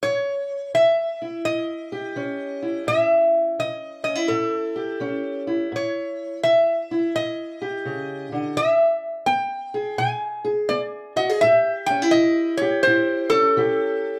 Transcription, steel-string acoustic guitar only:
0.04 A2
0.74 E3
1.22 E4
1.45 A2
1.92 G4
2.16 E3 C#4
2.62 E4
2.87 A2
3.59 E3
4.04 C#4
4.15 E4
4.30 A2
4.76 G4
5.00 E3 C#4
5.47 E4
5.72 A2
6.44 E3
6.91 E4
7.15 A2
7.62 G4
7.85 C#3
8.32 D3
8.57 E3
9.26 B3
9.74 G#4
9.98 B2
10.45 G#4
10.70 B3
11.16 F#4
11.29 G#4
11.43 A2 G4
11.90 C#4
12.02 E4
12.14 E3
12.61 G4
12.87 A2 E4
13.32 C#4
13.57 E3 G4

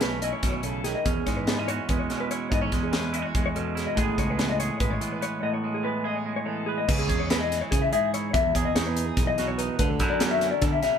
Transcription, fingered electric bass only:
Already playing: B1
0.43 B1
1.06 E2
1.26 G#2
1.90 E2
2.52 G#2
2.72 E2
3.35 E2
3.97 A1
4.18 C#2
4.81 A1
6.89 C#2
7.10 E2
7.72 C#3
8.34 E2
8.55 E2
8.76 E2
9.17 B1
9.79 D2
10.00 F#2
10.61 D3

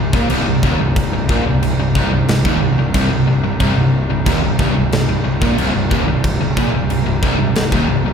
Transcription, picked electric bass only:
Already playing: C1
0.13 A#1
0.31 C1
0.47 C1
0.63 D#1
0.80 C1
1.12 C1
1.29 A#1
1.46 C1
1.62 C1
1.79 C1
1.96 C1
2.12 C1
2.28 C1
2.45 D#1
2.61 C1
2.78 C1
2.94 C1
3.11 C1
3.28 C1
3.43 C1
3.60 C1
3.76 C1
4.09 C1
4.27 D#1
4.42 C1
4.59 G1
4.76 C1
4.92 C1
5.09 C1
5.25 C1
5.42 A#1
5.59 C1
5.74 C1
5.91 D#1
6.07 C1
6.41 C1
6.57 A#1
6.73 C1
6.90 C1
7.06 C1
7.23 C1
7.39 C1
7.56 C1
7.73 D#1
7.88 C1
8.05 C1

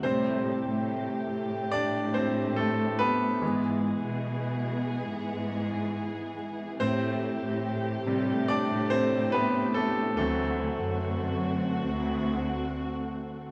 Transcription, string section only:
Already playing: C3 A3
0.04 E3 G4
3.42 G#3 B3 G#4
6.81 C3 A3 G4
10.19 D3 C4 F#4

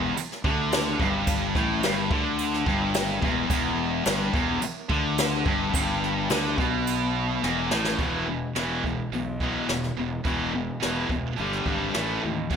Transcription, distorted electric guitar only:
Already playing: E2
0.18 muted distorted electric guitar stroke
0.45 D3
1.00 G2
1.56 A2
1.85 G2
2.11 D3
2.67 G2
3.23 E2
3.50 E2
4.05 G2
4.33 E2
4.62 muted distorted electric guitar stroke
4.89 D3
5.46 G2
5.74 G2
6.31 D3
6.58 B2
7.43 E2
7.71 A2
7.98 E2 B2 E3
8.27 E2 B2
8.55 E2 B2 E3
8.84 E2 B2
9.12 E2 B2
9.41 E2 B2 E3
9.68 E2 B2
9.97 E2 B2
10.24 E2 B2 E3
10.52 E2 B2
10.80 E2 B2 E3
11.08 E2 B2
11.36 G2 D3 G3
11.65 G2 D3 G3
11.93 A2 E3 A3
12.22 A2 E3
12.50 E2 B2 E3

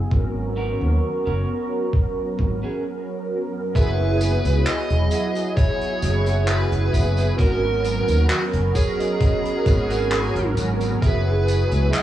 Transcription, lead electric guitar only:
3.76 B4
4.66 D#5
5.57 C#5
6.47 B4
7.38 A#4
8.29 F#4
8.75 G#4
11.02 B4
11.93 D#5

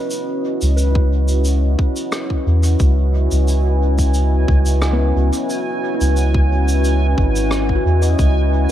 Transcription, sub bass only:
0.62 C#2
2.47 E2
2.80 C#2
3.32 C#2
4.48 C#2
5.16 C#2
6.01 C#2
7.18 G#1
7.85 E2
8.19 C#2

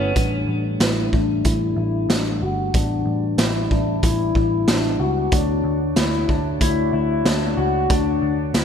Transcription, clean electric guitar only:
Already playing: C#4
0.16 D4
0.81 E4
1.13 D4
1.45 E4
1.77 E4
2.10 D4
2.42 F#4
2.74 D4
3.39 E4
3.71 D4
4.03 E4
4.35 E4
4.67 D4
5.00 F#4
5.32 D4
5.96 E4
6.29 D4
6.61 E4
6.93 E4
7.25 D4
7.57 F#4
7.90 D4
8.54 E4

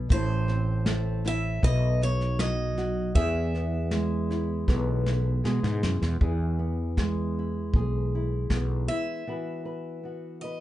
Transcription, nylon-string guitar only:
Already playing: B2 B3
0.11 A2 E4
0.50 C4
0.87 A3
1.26 E4
1.62 B2 B4
2.02 D#4
2.40 F#3
2.78 F#4
3.16 E3 G#4
3.54 B3
3.93 G#3
4.31 E4
4.68 B2 B3
5.07 E4
5.44 G#3 G#4
6.21 E3 G#4
6.59 B3
6.98 G#3
7.39 E4
7.76 G#4
8.15 E4
8.52 B3
8.91 E4
9.27 E3 B3 F#4 B4
9.65 B4
10.03 B3 F#4
10.44 B4

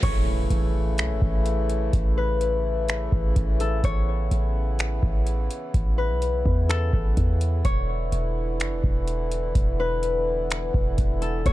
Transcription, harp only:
Already playing: A4 B4
0.03 C#5
2.17 B4
3.60 A4
3.84 C#5
5.98 B4
6.69 A4
7.65 C#5
9.80 B4
11.22 A4
11.46 C#5

